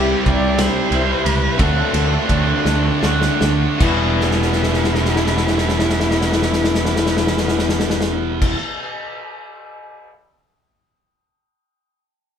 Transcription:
Already playing: C2 C3 G3 C4 E4 G4 E5 B5
0.25 C2 C3 D5 G5, kick, ride
0.59 G3 C5, snare, ride
0.91 C2 C3 G3 C4 E4 E5, ride
1.25 C#2 G3 B4, ride
1.57 D2 D3 A3 C4 D4 F#4 A4 D5 F#5 C6, kick, ride
1.93 D2 A3, ride
2.29 D2 D3 D5, kick, ride
2.65 D2 A3, snare
3.02 D2 D3 A3 D4 F#4 D5, snare
3.22 snare
3.41 D2 A3, snare
3.78 E1 E2 B2 E3 G3 B3 E4 F#5, kick, crash
3.83 E3 B3 F#4
4.21 snare
4.31 snare
4.42 snare
4.52 snare
4.63 snare
4.74 snare
4.84 snare
4.95 snare
5.05 snare
5.16 snare
5.27 snare
5.37 snare
5.47 snare
5.58 snare
5.69 snare
5.79 snare
5.90 snare
6.00 snare
6.11 snare
6.21 snare
6.32 snare
6.42 snare
6.53 snare
6.64 snare
6.75 snare
6.85 snare
6.96 snare
7.06 snare
7.17 snare
7.27 snare
7.38 snare
7.48 snare
7.59 snare
7.69 snare
7.80 snare
7.90 snare
8.01 snare
8.42 kick, crash

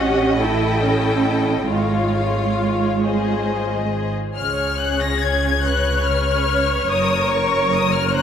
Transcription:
Already playing: A1 C#4 F#4 G4 D#5 F#5
0.39 E4 A4 G5
0.82 C#4
1.69 G#1 G#3 F4 C#5 F5
3.04 G#4 C5 D#5
4.36 C#2 C#3 G#4 C#5 F6
4.79 F#6
5.01 A#6
5.22 G#6
5.65 B4 C#5 F#6
6.07 F6
6.90 F#1 F#2 A#4 C#5 D#6
7.31 C#6
7.73 D#6
7.94 F6
8.14 A#4 C5 C#5 F#6

